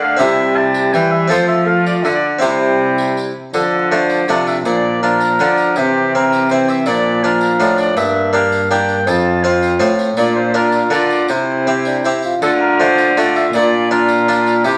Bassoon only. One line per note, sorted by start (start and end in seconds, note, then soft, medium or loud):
0.02 0.18 A3 medium
0.19 0.92 G3 medium
0.93 1.31 G3 medium
1.29 1.65 A3 medium
1.66 2.14 A3 medium
2.42 3.32 G3 medium
3.54 4.24 F3 medium
4.28 4.64 F3 medium
4.65 5.01 F3 medium
5.02 5.78 F3 medium
5.76 6.50 E3 medium
6.50 6.88 E3 medium
6.87 7.23 F3 medium
7.24 7.98 F3 medium
7.96 8.70 A#3 medium
8.70 9.08 A#3 medium
9.06 9.43 C4 medium
9.43 9.91 C4 medium
10.17 10.52 D4 soft
10.54 10.90 D4 medium
10.91 11.31 D4 soft
11.29 11.63 C4 medium
11.66 11.75 C4 medium
11.87 12.06 D4 medium
12.04 12.23 E4 medium
12.24 12.42 F4 medium
12.43 13.13 A3 medium
13.17 13.53 A3 medium
13.54 13.90 D4 medium
13.90 14.66 D4 medium
14.64 14.78 C4 medium